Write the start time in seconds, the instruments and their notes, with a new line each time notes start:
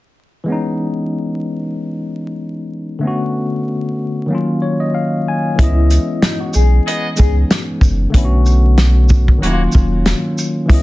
0.44 tine electric piano E3 G#3
0.48 tine electric piano B3 C#4
0.52 tine electric piano D#4
2.99 tine electric piano D3 A3
3.03 tine electric piano B3 C#4
3.07 tine electric piano F#4
4.26 tine electric piano D#3 F#3
4.30 tine electric piano A#3 C#4
4.35 tine electric piano F4
4.62 tine electric piano C#5
4.80 tine electric piano D#5
4.95 tine electric piano F5
5.28 tine electric piano G#5
5.55 tine electric piano E3 G#3, nylon-string guitar E4, kick, closed hi-hat
5.59 sub bass C#2, tine electric piano B3 C#4
5.63 tine electric piano D#5
5.91 closed hi-hat, shaker
6.22 nylon-string guitar D#4, snare, closed hi-hat
6.40 nylon-string guitar F#4
6.54 sub bass B1, nylon-string guitar G#4, shaker
6.86 trumpet section B3 G#4 D#5, closed hi-hat
7.15 tine electric piano E3 G#3 B3 C#4, nylon-string guitar G#4, closed hi-hat, shaker
7.19 sub bass C#2, tine electric piano D#4, kick
7.50 snare, closed hi-hat
7.81 sub bass F#1, kick, shaker
8.10 tine electric piano D3 A3
8.14 sub bass B1, tine electric piano B3 C#4, kick, closed hi-hat
8.18 tine electric piano E4
8.25 tine electric piano F#4
8.46 shaker
8.78 snare, closed hi-hat
9.09 kick, shaker
9.28 kick
9.38 tine electric piano D#3 F#3, trumpet section A#3 F#4 C#5
9.42 sub bass D#1, tine electric piano A#3 C#4, closed hi-hat
9.47 tine electric piano E4
9.53 tine electric piano F4
9.72 sub bass E1, kick, shaker
10.06 snare, closed hi-hat
10.38 shaker
10.66 tine electric piano E3 G#3, nylon-string guitar E4, kick, closed hi-hat
10.70 sub bass C#2, tine electric piano B3 C#4
10.74 tine electric piano D#5